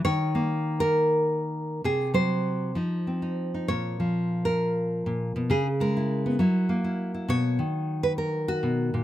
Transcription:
nylon-string guitar
Already playing: F#4
0.05 D#3 C#5
0.35 A#3
0.80 A#4
1.84 C3 G#4
2.14 F#3 C5
2.75 F3 D#4
3.07 C4
3.22 D#4
3.54 D#4
3.68 A#2 C#5
4.00 F3
4.45 A#4
5.06 A#2
5.36 B2
5.50 C#3 G#4
5.80 G#3 A#4
5.97 E4
6.26 B3
6.39 F#3 E4
6.69 A#3
6.84 E4
7.14 E4
7.28 B2 C#5
7.59 D#3
8.03 B4
8.18 A#4
8.48 F#4
8.63 B2
8.94 A#2

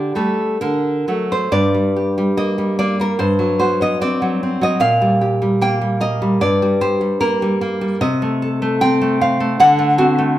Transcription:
nylon-string guitar
Already playing: D3 G4 D5
0.15 G3 A3 A4
0.61 D3 A#4
1.08 F#3 A3
1.32 C5
1.52 G2 D5
1.74 G3
1.96 G4
2.18 G3
2.37 A#3 D#5
2.58 G3
2.79 A#3 D5
3.00 G3 A#4
3.19 G2 C5
3.39 F#3
3.60 F#4 C5
3.81 F#3 D#5
4.01 C4 D5
4.22 F#3
4.43 C4
4.61 F#3 D#5
4.80 A#2 F5
5.01 G3
5.21 G4
5.42 G3
5.61 A#3 G5
5.81 G3
6.01 A#4 D#5
6.22 G3
6.41 G2 D5
6.62 G3
6.81 G4 C5
7.01 G3
7.20 A#3 A#4
7.42 G3
7.61 A#3
7.81 G3
8.01 C3 D#5
8.22 A3
8.42 A4
8.62 A3
8.81 C4 G5
9.01 A3
9.21 C5 F5
9.40 A3
9.60 D3 F#5
9.79 A3
9.98 C4 F#4
10.19 A3

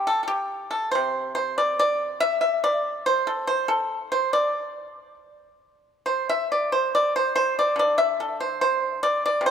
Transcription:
pipa
0.07 A4
0.23 A4
0.28 G4
0.71 A4
0.91 C3 C5
1.35 C5
1.58 D5
1.79 D5
2.20 E5
2.41 E5
2.64 D5
3.06 C5
3.27 A4
3.47 C5
3.68 A4
4.12 C5
4.33 D5
6.06 C5
6.29 E5
6.52 D5
6.72 C5
6.95 D5
7.16 C5
7.36 C5
7.59 D5
7.76 D3 D5
7.98 E5
8.20 A4
8.40 C5
8.61 C5
9.03 D5
9.26 D5
9.41 C3
9.46 C5

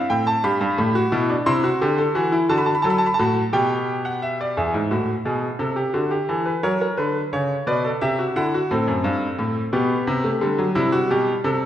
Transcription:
grand piano
Already playing: C4 E4
0.10 A2 G5
0.27 A5
0.44 G2 G4 B5
0.61 G2
0.78 A2
0.95 F#4
1.12 B2 E4
1.30 D4
1.46 C3 E4 C6
1.64 F#4
1.81 D3 G4
1.98 A4
2.15 E3 F#4
2.32 E4
2.49 D3 F#4 A5
2.58 B5
2.66 A5
2.75 B5
2.82 F#3 A4 A5
2.90 B5
2.98 A5
3.06 B5
3.14 A5
3.19 A2 F#4
3.53 B2 G4 G5
4.05 F#5
4.22 E5
4.41 D5
4.57 E2 G#4 E5
4.74 G#2
4.91 A2 F#4
5.25 B2 G#4
5.59 C3 A4
5.76 G4
5.94 D3 F#4
6.11 G4
6.29 E3 A4
6.46 B4
6.63 F#3 A#4 C#5
6.81 A#4
6.97 D3 B4
7.33 C#3 C#5
7.67 B2 B4 D5
7.85 A4
8.01 C3 G4 E5
8.19 F#4
8.36 D3 E4 F#5
8.54 F#4
8.71 A2 C4 A4
8.88 F#2
9.04 G2
9.39 A2
9.73 B2 B3 G4
10.07 C3
10.24 A3
10.41 D3 G3
10.58 F#3
10.75 C3 G3 E4
10.92 F#4
11.10 B2 G4
11.44 C3 A4

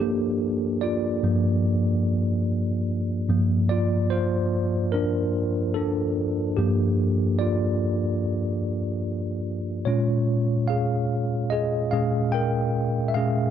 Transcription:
tine electric piano
Already playing: D4 A4 A#4
0.00 A#3 G4
0.81 F4 D5
1.23 G2 F3 A#3
3.29 G2 F3 A#3
3.69 F4 D5
4.10 F4 C5
4.92 D4 A#4
5.74 D4 A4
6.57 G2 F3 A#3 G4
7.39 F4 D5
9.85 A#2 G#3 C#4 F4 C#5
10.68 G#4 F5
11.50 G#4 D#5
11.91 A#2 G#3 C#4 G#4 F5
12.32 A#4 G5
13.08 E5
13.14 A#2 G#3 C#4 G#4 F5

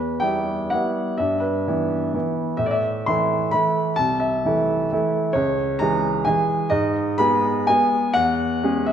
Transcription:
grand piano
Already playing: E2 B4
0.20 G3 B3 E4 G5
0.70 G3 B3 E4 F#5
1.18 G2 E5
1.40 B4
1.67 E3 B3 E4
2.14 E3 B3 E4
2.57 A2 E5
2.66 D5
2.71 E5
3.06 E3 A3 E4 C6
3.51 E3 A3 E4 B5
3.96 C2 A5
4.20 E5
4.45 E3 A3 E4
4.92 E3 A3 E4
5.33 C#2 C#5
5.79 E3 G#3 G#4 A#5
6.25 E3 G#3 G#4 G#5
6.70 G#2 D#5
7.18 G#3 B3 G#4 B5
7.67 G#3 B3 G#4 G#5
8.13 E2 F#5
8.63 G#3 C#4 G#4
8.86 E5

